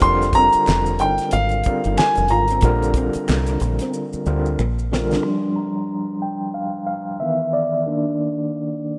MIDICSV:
0, 0, Header, 1, 8, 480
1, 0, Start_track
1, 0, Tempo, 652174
1, 15, Time_signature, 4, 2, 24, 8
1, 6614, End_track
2, 0, Start_track
2, 0, Title_t, "Grand piano"
2, 0, Program_c, 0, 0
2, 16, Note_on_c, 0, 84, 107
2, 258, Note_on_c, 0, 82, 115
2, 263, Note_off_c, 0, 84, 0
2, 707, Note_off_c, 0, 82, 0
2, 735, Note_on_c, 0, 79, 83
2, 977, Note_on_c, 0, 77, 91
2, 982, Note_off_c, 0, 79, 0
2, 1457, Note_on_c, 0, 80, 90
2, 1470, Note_off_c, 0, 77, 0
2, 1679, Note_off_c, 0, 80, 0
2, 1697, Note_on_c, 0, 82, 87
2, 3106, Note_off_c, 0, 82, 0
2, 6614, End_track
3, 0, Start_track
3, 0, Title_t, "Clean electric guitar"
3, 0, Program_c, 1, 27
3, 29, Note_on_c, 1, 58, 81
3, 126, Note_off_c, 1, 58, 0
3, 265, Note_on_c, 1, 60, 74
3, 364, Note_off_c, 1, 60, 0
3, 743, Note_on_c, 1, 63, 72
3, 843, Note_off_c, 1, 63, 0
3, 1221, Note_on_c, 1, 60, 81
3, 1321, Note_off_c, 1, 60, 0
3, 1369, Note_on_c, 1, 63, 71
3, 1434, Note_off_c, 1, 63, 0
3, 1697, Note_on_c, 1, 65, 77
3, 1799, Note_off_c, 1, 65, 0
3, 1848, Note_on_c, 1, 60, 83
3, 1913, Note_off_c, 1, 60, 0
3, 1943, Note_on_c, 1, 58, 77
3, 2043, Note_off_c, 1, 58, 0
3, 2184, Note_on_c, 1, 60, 74
3, 2283, Note_off_c, 1, 60, 0
3, 2566, Note_on_c, 1, 62, 69
3, 2632, Note_off_c, 1, 62, 0
3, 2808, Note_on_c, 1, 60, 79
3, 2873, Note_off_c, 1, 60, 0
3, 3142, Note_on_c, 1, 58, 70
3, 3242, Note_off_c, 1, 58, 0
3, 3628, Note_on_c, 1, 60, 71
3, 3726, Note_off_c, 1, 60, 0
3, 3776, Note_on_c, 1, 62, 68
3, 3838, Note_off_c, 1, 62, 0
3, 6614, End_track
4, 0, Start_track
4, 0, Title_t, "Tine electric piano"
4, 0, Program_c, 2, 4
4, 0, Control_c, 2, 64, 127
4, 16, Note_on_c, 2, 50, 90
4, 20, Note_on_c, 2, 55, 88
4, 23, Note_on_c, 2, 60, 87
4, 24, Control_c, 2, 64, 0
4, 26, Note_on_c, 2, 65, 85
4, 30, Note_on_c, 2, 70, 104
4, 161, Control_c, 2, 64, 127
4, 776, Note_off_c, 2, 50, 0
4, 778, Note_off_c, 2, 55, 0
4, 780, Note_off_c, 2, 60, 0
4, 781, Note_off_c, 2, 65, 0
4, 783, Note_off_c, 2, 70, 0
4, 1221, Note_on_c, 2, 50, 67
4, 1224, Note_on_c, 2, 55, 69
4, 1228, Note_on_c, 2, 60, 64
4, 1231, Note_on_c, 2, 65, 62
4, 1235, Note_on_c, 2, 70, 83
4, 1800, Note_off_c, 2, 50, 0
4, 1802, Note_off_c, 2, 55, 0
4, 1804, Note_off_c, 2, 60, 0
4, 1805, Note_off_c, 2, 65, 0
4, 1807, Note_off_c, 2, 70, 0
4, 1939, Note_on_c, 2, 50, 96
4, 1942, Note_on_c, 2, 55, 80
4, 1945, Note_on_c, 2, 60, 83
4, 1946, Control_c, 2, 64, 0
4, 1948, Note_on_c, 2, 65, 83
4, 1953, Note_on_c, 2, 70, 106
4, 2061, Control_c, 2, 64, 127
4, 2698, Note_off_c, 2, 50, 0
4, 2699, Note_off_c, 2, 55, 0
4, 2700, Note_off_c, 2, 60, 0
4, 2702, Note_off_c, 2, 65, 0
4, 2704, Note_off_c, 2, 70, 0
4, 3135, Note_on_c, 2, 50, 79
4, 3137, Note_on_c, 2, 55, 74
4, 3141, Note_on_c, 2, 60, 81
4, 3144, Note_on_c, 2, 65, 83
4, 3146, Note_on_c, 2, 70, 88
4, 3375, Note_off_c, 2, 50, 0
4, 3376, Note_off_c, 2, 55, 0
4, 3378, Note_off_c, 2, 60, 0
4, 3379, Note_off_c, 2, 65, 0
4, 3380, Note_off_c, 2, 70, 0
4, 3383, Control_c, 2, 64, 0
4, 3505, Control_c, 2, 64, 127
4, 3617, Note_on_c, 2, 50, 75
4, 3622, Note_on_c, 2, 55, 72
4, 3624, Note_on_c, 2, 60, 69
4, 3629, Note_on_c, 2, 65, 69
4, 3632, Note_on_c, 2, 70, 85
4, 3815, Note_off_c, 2, 50, 0
4, 3817, Note_off_c, 2, 55, 0
4, 3818, Note_off_c, 2, 60, 0
4, 3820, Note_off_c, 2, 65, 0
4, 3822, Note_off_c, 2, 70, 0
4, 3850, Note_on_c, 2, 84, 84
4, 3857, Note_on_c, 2, 53, 42
4, 3861, Note_on_c, 2, 55, 38
4, 3865, Control_c, 2, 64, 0
4, 3866, Note_on_c, 2, 62, 48
4, 3980, Control_c, 2, 64, 127
4, 4092, Note_on_c, 2, 82, 82
4, 4100, Note_off_c, 2, 84, 0
4, 4546, Note_off_c, 2, 53, 0
4, 4549, Note_off_c, 2, 55, 0
4, 4551, Note_off_c, 2, 62, 0
4, 4578, Note_on_c, 2, 79, 70
4, 4588, Note_off_c, 2, 82, 0
4, 4815, Note_on_c, 2, 77, 71
4, 4824, Note_off_c, 2, 79, 0
4, 5044, Note_off_c, 2, 77, 0
4, 5053, Note_on_c, 2, 77, 72
4, 5299, Note_on_c, 2, 76, 72
4, 5301, Note_off_c, 2, 77, 0
4, 5302, Note_on_c, 2, 52, 44
4, 5304, Control_c, 2, 64, 0
4, 5307, Note_on_c, 2, 59, 40
4, 5312, Note_on_c, 2, 51, 51
4, 5438, Control_c, 2, 64, 127
4, 5543, Note_on_c, 2, 74, 62
4, 5544, Note_off_c, 2, 76, 0
4, 5754, Note_off_c, 2, 52, 0
4, 5757, Note_off_c, 2, 59, 0
4, 5760, Note_off_c, 2, 51, 0
4, 5785, Control_c, 2, 64, 0
4, 5787, Note_on_c, 2, 51, 47
4, 5792, Note_on_c, 2, 58, 41
4, 5798, Note_on_c, 2, 62, 50
4, 5904, Control_c, 2, 64, 127
4, 6614, Note_off_c, 2, 51, 0
4, 6614, Note_off_c, 2, 58, 0
4, 6614, Note_off_c, 2, 62, 0
4, 6614, Note_off_c, 2, 74, 0
4, 6614, End_track
5, 0, Start_track
5, 0, Title_t, "Fingered electric bass"
5, 0, Program_c, 3, 33
5, 16, Note_on_c, 3, 29, 102
5, 357, Note_off_c, 3, 29, 0
5, 500, Note_on_c, 3, 29, 86
5, 740, Note_off_c, 3, 29, 0
5, 740, Note_on_c, 3, 31, 90
5, 866, Note_off_c, 3, 31, 0
5, 979, Note_on_c, 3, 32, 87
5, 1191, Note_off_c, 3, 32, 0
5, 1364, Note_on_c, 3, 31, 79
5, 1447, Note_off_c, 3, 31, 0
5, 1602, Note_on_c, 3, 29, 87
5, 1700, Note_off_c, 3, 29, 0
5, 1700, Note_on_c, 3, 32, 95
5, 1911, Note_off_c, 3, 32, 0
5, 1935, Note_on_c, 3, 34, 109
5, 2276, Note_off_c, 3, 34, 0
5, 2421, Note_on_c, 3, 36, 86
5, 2631, Note_off_c, 3, 36, 0
5, 2659, Note_on_c, 3, 34, 84
5, 2785, Note_off_c, 3, 34, 0
5, 3138, Note_on_c, 3, 38, 79
5, 3350, Note_off_c, 3, 38, 0
5, 3380, Note_on_c, 3, 34, 95
5, 3804, Note_off_c, 3, 34, 0
5, 6614, End_track
6, 0, Start_track
6, 0, Title_t, "Muted clean electric guitar strokes"
6, 987, Note_on_c, 9, 29, 47
6, 1061, Note_off_c, 9, 29, 0
6, 1462, Note_on_c, 9, 29, 44
6, 1536, Note_off_c, 9, 29, 0
6, 2665, Note_on_c, 9, 29, 44
6, 2738, Note_off_c, 9, 29, 0
6, 3391, Note_on_c, 9, 29, 41
6, 3464, Note_off_c, 9, 29, 0
6, 6614, End_track
7, 0, Start_track
7, 0, Title_t, "Muted fingered electric bass strokes"
7, 403, Note_on_c, 9, 29, 46
7, 477, Note_off_c, 9, 29, 0
7, 2322, Note_on_c, 9, 29, 44
7, 2396, Note_off_c, 9, 29, 0
7, 3045, Note_on_c, 9, 29, 42
7, 3118, Note_off_c, 9, 29, 0
7, 6614, End_track
8, 0, Start_track
8, 0, Title_t, "Drums"
8, 1, Note_on_c, 9, 42, 82
8, 12, Note_on_c, 9, 36, 112
8, 16, Note_on_c, 9, 82, 62
8, 75, Note_off_c, 9, 42, 0
8, 86, Note_off_c, 9, 36, 0
8, 89, Note_off_c, 9, 82, 0
8, 160, Note_on_c, 9, 42, 35
8, 164, Note_on_c, 9, 82, 48
8, 172, Note_on_c, 9, 38, 32
8, 234, Note_off_c, 9, 42, 0
8, 238, Note_off_c, 9, 82, 0
8, 243, Note_on_c, 9, 36, 88
8, 243, Note_on_c, 9, 42, 67
8, 245, Note_off_c, 9, 38, 0
8, 250, Note_on_c, 9, 82, 42
8, 316, Note_off_c, 9, 36, 0
8, 316, Note_off_c, 9, 42, 0
8, 324, Note_off_c, 9, 82, 0
8, 387, Note_on_c, 9, 42, 52
8, 389, Note_on_c, 9, 82, 44
8, 461, Note_off_c, 9, 42, 0
8, 462, Note_off_c, 9, 82, 0
8, 488, Note_on_c, 9, 26, 51
8, 488, Note_on_c, 9, 82, 53
8, 501, Note_on_c, 9, 39, 78
8, 505, Note_on_c, 9, 38, 107
8, 562, Note_off_c, 9, 26, 0
8, 562, Note_off_c, 9, 82, 0
8, 574, Note_off_c, 9, 39, 0
8, 579, Note_off_c, 9, 38, 0
8, 631, Note_on_c, 9, 82, 44
8, 705, Note_off_c, 9, 82, 0
8, 728, Note_on_c, 9, 42, 60
8, 738, Note_on_c, 9, 82, 49
8, 802, Note_off_c, 9, 42, 0
8, 812, Note_off_c, 9, 82, 0
8, 868, Note_on_c, 9, 42, 53
8, 870, Note_on_c, 9, 82, 44
8, 887, Note_on_c, 9, 38, 33
8, 941, Note_off_c, 9, 42, 0
8, 943, Note_off_c, 9, 82, 0
8, 960, Note_off_c, 9, 38, 0
8, 965, Note_on_c, 9, 42, 86
8, 968, Note_on_c, 9, 82, 62
8, 1038, Note_off_c, 9, 42, 0
8, 1041, Note_off_c, 9, 82, 0
8, 1096, Note_on_c, 9, 42, 32
8, 1113, Note_on_c, 9, 82, 40
8, 1170, Note_off_c, 9, 42, 0
8, 1187, Note_off_c, 9, 82, 0
8, 1203, Note_on_c, 9, 42, 61
8, 1209, Note_on_c, 9, 82, 46
8, 1224, Note_on_c, 9, 36, 90
8, 1277, Note_off_c, 9, 42, 0
8, 1282, Note_off_c, 9, 82, 0
8, 1297, Note_off_c, 9, 36, 0
8, 1354, Note_on_c, 9, 42, 45
8, 1356, Note_on_c, 9, 82, 41
8, 1427, Note_off_c, 9, 42, 0
8, 1430, Note_off_c, 9, 82, 0
8, 1454, Note_on_c, 9, 26, 59
8, 1454, Note_on_c, 9, 82, 56
8, 1462, Note_on_c, 9, 39, 95
8, 1466, Note_on_c, 9, 38, 116
8, 1527, Note_off_c, 9, 26, 0
8, 1527, Note_off_c, 9, 82, 0
8, 1535, Note_off_c, 9, 39, 0
8, 1540, Note_off_c, 9, 38, 0
8, 1585, Note_on_c, 9, 42, 35
8, 1598, Note_on_c, 9, 82, 44
8, 1659, Note_off_c, 9, 42, 0
8, 1671, Note_off_c, 9, 82, 0
8, 1680, Note_on_c, 9, 42, 54
8, 1754, Note_off_c, 9, 42, 0
8, 1823, Note_on_c, 9, 42, 47
8, 1841, Note_on_c, 9, 82, 43
8, 1897, Note_off_c, 9, 42, 0
8, 1915, Note_off_c, 9, 82, 0
8, 1920, Note_on_c, 9, 42, 76
8, 1932, Note_on_c, 9, 36, 108
8, 1934, Note_on_c, 9, 82, 56
8, 1994, Note_off_c, 9, 42, 0
8, 2005, Note_off_c, 9, 36, 0
8, 2007, Note_off_c, 9, 82, 0
8, 2079, Note_on_c, 9, 42, 33
8, 2086, Note_on_c, 9, 82, 47
8, 2152, Note_off_c, 9, 42, 0
8, 2159, Note_off_c, 9, 82, 0
8, 2162, Note_on_c, 9, 42, 62
8, 2163, Note_on_c, 9, 36, 90
8, 2175, Note_on_c, 9, 82, 43
8, 2235, Note_off_c, 9, 42, 0
8, 2236, Note_off_c, 9, 36, 0
8, 2249, Note_off_c, 9, 82, 0
8, 2306, Note_on_c, 9, 42, 53
8, 2315, Note_on_c, 9, 82, 45
8, 2380, Note_off_c, 9, 42, 0
8, 2388, Note_off_c, 9, 82, 0
8, 2414, Note_on_c, 9, 26, 54
8, 2414, Note_on_c, 9, 82, 54
8, 2423, Note_on_c, 9, 39, 81
8, 2428, Note_on_c, 9, 38, 98
8, 2487, Note_off_c, 9, 26, 0
8, 2487, Note_off_c, 9, 82, 0
8, 2496, Note_off_c, 9, 39, 0
8, 2501, Note_off_c, 9, 38, 0
8, 2550, Note_on_c, 9, 42, 35
8, 2552, Note_on_c, 9, 82, 46
8, 2624, Note_off_c, 9, 42, 0
8, 2625, Note_off_c, 9, 82, 0
8, 2649, Note_on_c, 9, 42, 63
8, 2663, Note_on_c, 9, 82, 46
8, 2723, Note_off_c, 9, 42, 0
8, 2737, Note_off_c, 9, 82, 0
8, 2789, Note_on_c, 9, 42, 55
8, 2799, Note_on_c, 9, 82, 47
8, 2808, Note_on_c, 9, 38, 34
8, 2863, Note_off_c, 9, 42, 0
8, 2873, Note_off_c, 9, 82, 0
8, 2881, Note_off_c, 9, 38, 0
8, 2896, Note_on_c, 9, 82, 65
8, 2969, Note_off_c, 9, 82, 0
8, 3040, Note_on_c, 9, 82, 44
8, 3113, Note_off_c, 9, 82, 0
8, 3134, Note_on_c, 9, 82, 46
8, 3208, Note_off_c, 9, 82, 0
8, 3281, Note_on_c, 9, 82, 39
8, 3354, Note_off_c, 9, 82, 0
8, 3379, Note_on_c, 9, 26, 57
8, 3379, Note_on_c, 9, 82, 57
8, 3452, Note_off_c, 9, 26, 0
8, 3452, Note_off_c, 9, 82, 0
8, 3524, Note_on_c, 9, 82, 40
8, 3598, Note_off_c, 9, 82, 0
8, 3631, Note_on_c, 9, 38, 94
8, 3704, Note_off_c, 9, 38, 0
8, 3762, Note_on_c, 9, 82, 43
8, 3772, Note_on_c, 9, 38, 83
8, 3835, Note_off_c, 9, 82, 0
8, 3846, Note_off_c, 9, 38, 0
8, 6614, End_track
0, 0, End_of_file